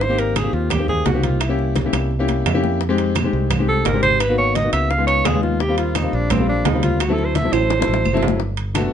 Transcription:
Already playing: fingered electric bass G#1
0.01 alto saxophone C5, high bongo, high conga
0.09 grand piano A#3 C4 D#4 G4
0.18 alto saxophone A#4, high conga, high timbale
0.36 alto saxophone G#4, high bongo, high conga, high timbale, low timbale, claves
0.43 grand piano A#3 C4 D#4 G4
0.53 fingered electric bass D#2, alto saxophone F4, high conga
0.70 alto saxophone G4, high bongo, high conga, low conga, high timbale, claves
0.78 grand piano A#3 C4 D#4 G4
0.88 alto saxophone G#4, high conga, low conga
1.05 fingered electric bass C2, alto saxophone F#4, high bongo, low bongo, high conga, high timbale, low timbale
1.13 grand piano A#3 C4 D#4 G4
1.23 alto saxophone F4, high conga, high timbale
1.40 alto saxophone E4, high bongo, high timbale, claves
1.48 grand piano A#3 C#4 E4 G4
1.58 high bongo, high conga
1.75 high bongo, high conga, high timbale, low timbale
1.84 grand piano A#3 C#4 E4 G4
1.93 fingered electric bass C2, high bongo, high timbale, claves
2.11 high conga
2.19 grand piano A#3 C#4 E4 G4
2.28 low bongo, high conga, high timbale
2.46 fingered electric bass F2, grand piano E5, high conga, high timbale, low timbale, claves
2.54 grand piano A#3 C#4 E4 G4
2.63 grand piano G5, low bongo
2.81 high bongo, high conga
2.89 grand piano G#3 C4 D#4 G4
2.98 high conga, high timbale
3.15 high bongo, high conga, high timbale, low timbale, claves
3.24 grand piano G#3 C4 D#4 G4
3.33 fingered electric bass C2, high conga
3.50 high bongo, high conga, low conga, high timbale, claves
3.59 grand piano G#3 C4 D#4 G4
3.68 alto saxophone A4, high conga
3.85 fingered electric bass G#1, alto saxophone A#4, high bongo, low bongo, high conga, high timbale, low timbale
3.94 grand piano G#3 C4 D#4 G4
4.03 alto saxophone C5, high conga, high timbale
4.20 alto saxophone B4, high bongo, high conga, high timbale, claves
4.29 grand piano A#3 B3 D#4 F#4
4.38 alto saxophone C#5, high bongo, high conga
4.55 alto saxophone D#5, high bongo, high conga, high timbale, low timbale
4.64 grand piano A#3 B3 D#4 F#4
4.73 fingered electric bass C#2, alto saxophone E5, high bongo, high conga, high timbale, claves
4.90 alto saxophone F5, high bongo, high conga
4.98 grand piano G#3 B3 D#4 F4
5.07 alto saxophone C#5, high timbale
5.25 fingered electric bass D#2, alto saxophone G#4, high bongo, low bongo, high conga, high timbale, low timbale, claves
5.34 grand piano G#3 B3 D#4 F4
5.43 alto saxophone F4, high bongo
5.60 alto saxophone G4, high bongo, high conga
5.69 grand piano G3 A#3 C4 F4
5.78 alto saxophone F4, high conga, high timbale
5.95 alto saxophone D#4, high bongo, high conga, high timbale, low timbale, claves
6.03 grand piano G3 A#3 C4 F4
6.13 fingered electric bass A#1, alto saxophone D4, high conga
6.30 alto saxophone C4, high bongo, high conga, low conga, high timbale, claves
6.38 grand piano G3 A#3 C4 F4
6.48 alto saxophone D4, high conga
6.65 fingered electric bass D2, alto saxophone D#4, high bongo, low bongo, high conga, high timbale, low timbale
6.74 grand piano G3 A#3 C4 F4
6.83 alto saxophone F4, high conga, high timbale
7.00 alto saxophone F#4, high bongo, high timbale, claves
7.08 grand piano F#3 A3 C4 E4
7.13 alto saxophone A4
7.18 high bongo, high conga
7.25 alto saxophone C5
7.35 alto saxophone E5, high bongo, high conga, high timbale, low timbale
7.44 grand piano F#3 A3 C4 E4
7.53 fingered electric bass A1, alto saxophone C5, high bongo, high conga, high timbale, claves
7.70 high bongo, high conga, high timbale
7.79 grand piano F#3 A3 C4 E4, high bongo
7.88 fingered electric bass A1, high conga
7.94 high bongo
8.05 fingered electric bass G1, low bongo, high conga, claves
8.13 grand piano F#3 A3 C4 E4, low bongo
8.23 high conga, low timbale
8.28 low bongo
8.40 high bongo, high conga
8.57 high conga, high timbale
8.74 grand piano A3 B3 D4 F#4, high bongo, high conga, high timbale, low timbale, claves

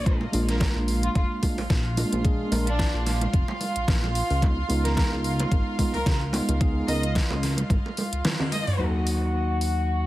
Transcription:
Already playing: analog synth bass A#1, violin section D#5
0.06 tine electric piano G#3 A#3 D4 F4, string section F4 F5, kick, closed hi-hat
0.21 muted conga
0.32 analog synth bass A#1, tine electric piano G#3 A#3 D4 F4, open hi-hat
0.49 violin section A#4, snare, closed hi-hat
0.60 violin section A#4, kick, snare, closed hi-hat, muted conga
0.76 analog synth bass A#1
0.88 open hi-hat
1.03 violin section F4, closed hi-hat
1.15 analog synth bass F1, violin section F4, kick, closed hi-hat, muted conga
1.42 tine electric piano G#3 A#3 D4 F4, kick, open hi-hat, high conga
1.58 analog synth bass A#1, open hi-hat, muted conga
1.70 analog synth bass A#1, kick, snare, closed hi-hat
1.97 tine electric piano G#3 A#3 D4 F4, open hi-hat, high conga
2.12 analog synth bass A#1, closed hi-hat, muted conga
2.24 tine electric piano G#3 A#3 D4 G#4, kick, closed hi-hat
2.51 analog synth bass A#1, tine electric piano G#3 A#3 D4 A#4, open hi-hat, muted conga
2.66 violin section D4, closed hi-hat
2.79 kick, snare, closed hi-hat
2.94 analog synth bass A#1
3.06 snare, open hi-hat, muted conga
3.21 closed hi-hat, high conga
3.34 analog synth bass F1, kick, closed hi-hat
3.48 muted conga
3.61 open hi-hat, high conga
3.76 analog synth bass A#1, closed hi-hat
3.88 analog synth bass A#1, kick, snare, closed hi-hat
4.04 muted conga
4.15 open hi-hat
4.30 analog synth bass C#2, open hi-hat
4.42 tine electric piano G#3 B3 D#4 F4, kick, closed hi-hat, muted conga
4.68 analog synth bass C#2, tine electric piano G#3 B3 D#4 F4, open hi-hat
4.84 violin section A#4, snare, closed hi-hat
4.97 violin section A#4, kick, snare, closed hi-hat, muted conga
5.12 analog synth bass C#2
5.24 open hi-hat
5.40 closed hi-hat, muted conga
5.52 analog synth bass G#1, kick, closed hi-hat
5.79 tine electric piano G#3 B3 D#4 F4, kick, open hi-hat, high conga
5.94 analog synth bass C#2, violin section A#4, open hi-hat, muted conga
6.06 analog synth bass C#2, kick, snare, closed hi-hat
6.33 tine electric piano G#3 B3 D#4 F4, open hi-hat, muted conga, high conga
6.49 analog synth bass C#2, closed hi-hat
6.60 tine electric piano G#3 B3 D#4 G#4, kick, closed hi-hat
6.88 analog synth bass C#2, tine electric piano G#3 B3 D#4 A#4, violin section D#5, open hi-hat, muted conga
7.03 closed hi-hat
7.15 kick, snare, closed hi-hat
7.31 analog synth bass C#2, muted conga
7.43 snare, open hi-hat
7.57 closed hi-hat, high conga
7.70 analog synth bass G#1, kick, closed hi-hat, high conga
7.86 muted conga
7.97 open hi-hat, high conga
8.13 analog synth bass C#2, closed hi-hat
8.25 snare, closed hi-hat, high tom, muted conga
8.40 high tom, low conga
8.52 violin section D#5, open hi-hat, high conga
8.67 mid tom, open hi-hat
8.78 analog synth bass D#2, tine electric piano F#3 A#3 D#4 F#4, string section F#4 F#5
9.07 open hi-hat
9.61 open hi-hat

